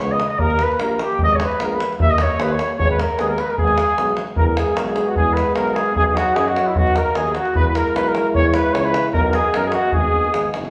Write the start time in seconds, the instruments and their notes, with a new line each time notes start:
0.00 tuba C#2, euphonium G#3 B3, flugelhorn C#5
0.11 flugelhorn D#5
0.20 davul high
0.29 flugelhorn D#5, davul high
0.39 tuba D#2, euphonium G3 A#3, flugelhorn A#4, davul low
0.50 davul high
0.59 flugelhorn B4, davul high
0.72 davul high
0.79 tuba A#1, euphonium G3 A#3, flugelhorn A#4, davul high
0.91 davul high
0.99 flugelhorn G4, davul high
1.04 flugelhorn G4
1.10 davul high
1.19 tuba G#1, euphonium G#3 B3, flugelhorn D#5, davul low
1.24 flugelhorn D#5
1.31 flugelhorn C#5, davul high
1.36 flugelhorn C#5
1.40 flugelhorn B4, davul high
1.46 flugelhorn B4
1.52 davul high
1.60 tuba A#1, euphonium G#3 B3, flugelhorn A#4, davul high
1.65 flugelhorn A#4
1.73 flugelhorn B4
1.80 davul high
1.93 davul high
2.00 tuba D#2, euphonium G3 A#3, flugelhorn E5, davul low
2.04 flugelhorn E5
2.10 flugelhorn D#5, davul high
2.18 flugelhorn C#5, davul high
2.23 flugelhorn C#5
2.31 davul high
2.38 tuba D#2, euphonium G3 A#3, flugelhorn B4, davul high
2.52 flugelhorn C#5
2.59 davul high
2.70 davul high
2.78 tuba G#1, euphonium G#3 B3, flugelhorn C#5, davul low
2.84 flugelhorn C#5
2.91 flugelhorn B4, davul high
3.00 flugelhorn A#4, davul high
3.10 davul high
3.18 tuba D#2, euphonium G#3 B3, flugelhorn G#4, davul high
3.28 flugelhorn A#4
3.38 flugelhorn B4, davul high
3.45 flugelhorn A#4
3.50 flugelhorn A#4, davul high
3.58 tuba G#1, euphonium G#3 B3, flugelhorn G#4, davul low
3.67 davul high
3.78 davul high
3.89 davul high
3.98 tuba B1, euphonium G#3 B3, davul high
4.09 davul high
4.17 davul high
4.27 davul high
4.36 tuba E2, euphonium G#3 B3, flugelhorn A#4, davul low
4.47 flugelhorn A#4
4.56 flugelhorn G#4, davul high
4.75 tuba B1, flugelhorn A#4, davul high
4.86 flugelhorn G#4, davul high
4.96 davul high
5.07 flugelhorn F#4
5.16 tuba E2, flugelhorn G#4, davul low
5.33 flugelhorn B4, davul high
5.55 tuba B1, flugelhorn A#4, davul high
5.68 davul high
5.74 flugelhorn G#4, davul high
5.95 tuba B1, euphonium F#3 D#4, flugelhorn G#4, davul low
6.06 flugelhorn G#4
6.15 flugelhorn F#4, davul high
6.35 tuba F#2, flugelhorn G#4, davul high
6.47 flugelhorn F#4, davul high
6.56 davul high
6.66 flugelhorn E4
6.76 tuba B1, flugelhorn F#4, davul low
6.87 davul high
6.96 flugelhorn A#4, davul high
7.15 tuba D#2, flugelhorn G#4, davul high
7.27 davul high
7.34 flugelhorn F#4, davul high
7.45 davul high
7.54 tuba E2, euphonium G#3 E4, flugelhorn B4, davul low
7.67 flugelhorn B4
7.75 flugelhorn A#4, davul high
7.95 tuba B1, flugelhorn B4, davul high
8.07 flugelhorn A#4, davul high
8.15 davul high
8.35 tuba E2, flugelhorn C#5, davul low
8.46 flugelhorn C#5
8.54 flugelhorn B4, davul high
8.73 tuba C#2, flugelhorn C#5, davul high
8.77 flugelhorn B4 C#5
8.85 flugelhorn B4, davul high
8.94 davul high
9.13 tuba B1, euphonium B3 D#4, flugelhorn A#4, davul low
9.23 flugelhorn A#4
9.28 flugelhorn A#4
9.33 flugelhorn G#4, davul high
9.38 flugelhorn G#4
9.54 tuba F#2, flugelhorn A#4, davul high
9.64 flugelhorn G#4, davul high
9.68 flugelhorn G#4, davul high
9.73 flugelhorn F#4
9.78 flugelhorn F#4
9.92 tuba G#1, euphonium B3 D#4, flugelhorn G#4, davul low
9.97 flugelhorn G#4
10.13 tuba A#1
10.25 davul high
10.33 tuba G#1, davul high
10.53 tuba F#1, davul high
10.65 davul high